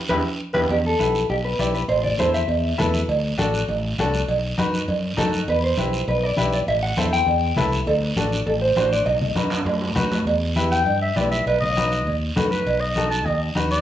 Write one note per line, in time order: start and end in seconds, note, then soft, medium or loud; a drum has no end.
0.09 0.21 E2 medium
0.09 0.20 E4 loud
0.09 0.20 G4 medium
0.09 0.16 B4 medium
0.09 0.19 B4 loud
0.09 high conga medium
0.09 high timbale loud
0.09 long guiro medium
0.54 0.66 E2 medium
0.54 0.64 E4 medium
0.54 0.64 G4 medium
0.54 0.61 B4 medium
0.54 0.64 B4 medium
0.54 high conga medium
0.54 high timbale loud
0.54 long guiro medium
0.69 0.93 E2 loud
0.69 0.76 G4 medium
0.69 cowbell loud
0.69 high conga soft
0.69 long guiro medium
0.86 1.29 A4 medium
0.99 1.23 B1 medium
0.99 1.20 E4 medium
0.99 1.20 G4 medium
0.99 1.21 B4 medium
0.99 cowbell medium
0.99 high conga medium
0.99 short guiro medium
1.15 short guiro medium
1.29 1.53 B1 loud
1.29 1.35 G4 medium
1.29 cowbell medium
1.29 high conga soft
1.29 long guiro medium
1.45 1.72 B4 medium
1.59 1.83 B1 medium
1.59 1.80 E4 medium
1.59 1.81 G4 medium
1.59 1.80 D5 medium
1.59 cowbell medium
1.59 high conga medium
1.59 short guiro medium
1.74 1.79 B4 medium
1.74 short guiro medium
1.88 2.12 A1 loud
1.88 2.03 C5 loud
1.88 cowbell loud
1.88 high conga soft
1.88 long guiro medium
2.04 2.18 D5 medium
2.04 low conga medium
2.18 2.42 E2 medium
2.18 2.40 E4 medium
2.18 2.40 A4 medium
2.18 2.34 C5 medium
2.18 2.40 C5 medium
2.18 cowbell medium
2.18 high conga medium
2.18 short guiro medium
2.34 2.90 E5 loud
2.34 short guiro medium
2.48 2.72 E2 loud
2.48 cowbell medium
2.48 high conga soft
2.48 long guiro medium
2.78 3.03 E2 loud
2.78 3.00 E4 loud
2.78 3.00 A4 medium
2.78 3.00 B4 loud
2.78 cowbell medium
2.78 high conga medium
2.78 low conga medium
2.78 low timbale medium
2.78 short guiro medium
2.94 short guiro medium
3.08 3.32 D2 medium
3.08 cowbell loud
3.08 high conga soft
3.08 long guiro medium
3.38 3.62 A1 medium
3.38 3.59 D4 medium
3.38 3.59 F#4 medium
3.38 3.60 A4 loud
3.38 cowbell medium
3.38 high conga medium
3.38 short guiro medium
3.54 short guiro medium
3.68 3.92 A1 loud
3.68 cowbell medium
3.68 high conga soft
3.68 long guiro medium
3.98 4.22 C2 medium
3.98 4.19 D4 medium
3.98 4.20 F#4 medium
3.98 4.20 A4 loud
3.98 cowbell medium
3.98 high conga medium
3.98 low timbale medium
3.98 short guiro medium
4.14 short guiro medium
4.28 4.52 B1 loud
4.28 cowbell loud
4.28 high conga soft
4.28 long guiro medium
4.58 4.82 F#2 medium
4.58 4.79 D#4 medium
4.58 4.79 F#4 medium
4.58 4.80 B4 loud
4.58 cowbell medium
4.58 high conga medium
4.58 short guiro medium
4.74 short guiro medium
4.88 5.12 F#2 loud
4.88 cowbell medium
4.88 high conga soft
4.88 long guiro medium
5.17 5.42 F#2 medium
5.17 5.38 D#4 medium
5.17 5.39 F#4 medium
5.17 5.39 A4 loud
5.17 cowbell medium
5.17 high conga medium
5.17 low conga medium
5.17 low timbale medium
5.17 short guiro medium
5.33 short guiro medium
5.47 5.72 E2 loud
5.47 5.63 B4 medium
5.47 cowbell loud
5.47 high conga soft
5.47 long guiro medium
5.64 6.05 C5 medium
5.77 6.01 B1 medium
5.77 5.99 E4 medium
5.77 5.99 G4 medium
5.77 5.99 B4 medium
5.77 cowbell medium
5.77 high conga medium
5.77 short guiro medium
5.93 short guiro medium
6.07 6.32 B1 loud
6.07 6.23 B4 loud
6.07 cowbell medium
6.07 high conga soft
6.07 long guiro medium
6.23 6.52 D5 medium
6.37 6.61 B1 medium
6.37 6.58 E4 medium
6.37 6.58 G4 medium
6.37 6.59 B4 medium
6.37 cowbell medium
6.37 high conga medium
6.37 short guiro medium
6.53 6.59 D5 medium
6.53 short guiro medium
6.67 6.91 A1 loud
6.67 6.73 E5 loud
6.67 cowbell loud
6.67 long guiro medium
6.83 6.98 F#5 loud
6.97 7.21 E2 medium
6.97 7.18 E4 medium
6.97 7.19 A4 medium
6.97 7.19 C5 medium
6.97 7.12 E5 medium
6.97 cowbell medium
6.97 high conga medium
6.97 short guiro medium
7.13 7.68 G5 loud
7.13 short guiro medium
7.26 7.51 E2 loud
7.26 cowbell medium
7.26 high conga soft
7.26 long guiro medium
7.56 7.81 C2 medium
7.56 7.78 E4 medium
7.56 7.78 A4 medium
7.56 7.79 B4 loud
7.56 cowbell medium
7.56 high conga medium
7.56 low conga medium
7.56 low timbale medium
7.56 short guiro medium
7.72 short guiro medium
7.86 8.11 D2 loud
7.86 7.93 A4 loud
7.86 cowbell loud
7.86 high conga soft
7.86 long guiro medium
8.02 8.46 B4 loud
8.16 8.40 A1 medium
8.16 8.38 D4 medium
8.16 8.38 F#4 medium
8.16 8.38 A4 medium
8.16 cowbell medium
8.16 high conga medium
8.16 short guiro medium
8.32 short guiro medium
8.46 8.71 A1 loud
8.46 8.52 A4 medium
8.46 cowbell medium
8.46 high conga soft
8.46 long guiro medium
8.62 8.90 C5 loud
8.76 9.00 A1 loud
8.76 8.98 D4 medium
8.76 8.98 F#4 medium
8.76 8.98 C5 medium
8.76 cowbell medium
8.76 high conga medium
8.76 low timbale medium
8.76 short guiro medium
8.93 9.06 D5 medium
8.93 short guiro medium
9.06 9.30 B1 loud
9.06 9.92 D#5 medium
9.06 cowbell loud
9.06 high conga soft
9.06 long guiro medium
9.21 low conga medium
9.35 9.60 F#2 medium
9.35 9.57 D#4 medium
9.35 9.57 F#4 medium
9.35 9.58 B4 medium
9.35 cowbell medium
9.35 high conga medium
9.35 high timbale medium
9.35 short guiro medium
9.50 high timbale loud
9.50 short guiro medium
9.65 9.90 F#2 loud
9.65 cowbell medium
9.65 high conga soft
9.65 low timbale loud
9.65 long guiro medium
9.81 low timbale medium
9.95 10.20 F#2 medium
9.95 10.17 D#4 medium
9.95 10.17 F#4 medium
9.95 10.17 B4 loud
9.95 cowbell medium
9.95 high conga medium
9.95 low conga medium
9.95 short guiro medium
10.12 low timbale medium
10.12 short guiro medium
10.25 10.86 E2 loud
10.25 cowbell loud
10.25 high conga soft
10.25 long guiro medium
10.56 10.77 E4 medium
10.56 10.77 G4 medium
10.56 10.78 B4 medium
10.56 cowbell medium
10.56 high conga medium
10.56 short guiro medium
10.71 11.00 G5 medium
10.71 short guiro medium
10.86 11.10 G2 loud
10.86 cowbell medium
10.86 high conga soft
10.86 long guiro medium
11.02 11.18 E5 medium
11.16 11.40 B1 medium
11.16 11.37 E4 medium
11.16 11.37 G4 medium
11.16 11.37 B4 medium
11.16 11.31 D5 medium
11.16 cowbell medium
11.16 high conga medium
11.16 low timbale medium
11.16 short guiro medium
11.31 11.46 E5 medium
11.31 short guiro medium
11.46 12.06 B1 medium
11.46 11.60 B4 medium
11.46 cowbell loud
11.46 high conga soft
11.46 long guiro medium
11.61 12.19 D#5 loud
11.61 low conga medium
11.77 11.98 D#4 medium
11.77 11.98 F#4 medium
11.77 11.98 B4 medium
11.77 cowbell medium
11.77 high conga medium
11.77 short guiro medium
11.92 short guiro medium
12.06 12.30 D#2 loud
12.06 cowbell medium
12.06 high conga soft
12.06 long guiro medium
12.36 12.60 F#2 loud
12.36 12.57 D#4 medium
12.36 12.57 F#4 medium
12.36 12.53 A4 medium
12.36 12.57 B4 medium
12.36 cowbell medium
12.36 high conga medium
12.36 low conga medium
12.36 low timbale medium
12.36 short guiro medium
12.51 12.82 B4 medium
12.51 short guiro medium
12.66 13.25 B1 loud
12.66 cowbell loud
12.66 high conga soft
12.66 long guiro medium
12.81 13.10 D#5 loud
12.96 13.17 D#4 medium
12.96 13.18 F#4 medium
12.96 13.18 A4 medium
12.96 cowbell medium
12.96 high conga medium
12.96 short guiro medium
13.10 13.27 A5 medium
13.10 short guiro medium
13.25 13.49 D#2 loud
13.25 13.40 D#5 medium
13.25 cowbell medium
13.25 high conga soft
13.25 long guiro medium
13.55 13.80 D#2 loud
13.55 13.76 D#4 medium
13.55 13.77 F#4 medium
13.55 13.77 B4 medium
13.55 cowbell medium
13.55 high conga medium
13.55 short guiro medium
13.71 13.81 D#5 loud
13.71 short guiro medium